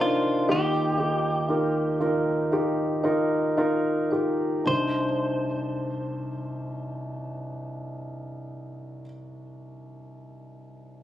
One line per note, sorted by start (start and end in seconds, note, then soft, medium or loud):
0.00 0.45 C2 medium
0.00 0.45 C3 medium
0.00 0.50 D4 medium
0.00 0.48 D#4 medium
0.00 0.46 F4 medium
0.00 0.46 A#4 medium
0.00 0.50 C5 medium
0.00 0.50 D5 medium
0.48 4.63 D#2 soft
0.48 4.63 D#3 soft
0.48 0.96 D#4 medium
0.48 0.96 F4 medium
0.48 0.96 G4 medium
0.48 3.55 G4 medium
0.98 1.46 D#4 medium
0.98 1.47 F4 soft
0.98 1.47 G4 medium
1.49 1.97 D#4 medium
1.49 1.98 F4 soft
1.49 1.98 A#4 medium
2.00 2.49 D#4 medium
2.00 2.49 F4 medium
2.00 2.49 A#4 medium
2.52 3.01 D#4 medium
2.52 3.02 F4 medium
2.52 3.02 G4 medium
3.04 3.55 D#4 medium
3.04 3.55 F4 medium
3.04 3.55 A#4 medium
3.57 4.09 D#4 medium
3.57 4.09 F4 medium
3.57 4.10 A#4 medium
4.11 4.64 D#4 soft
4.11 4.64 F4 soft
4.11 4.64 G4 medium
4.64 9.03 C2 soft
4.64 9.01 D4 soft
4.64 9.03 D#4 soft
4.64 9.04 C5 soft
4.68 9.05 C5 soft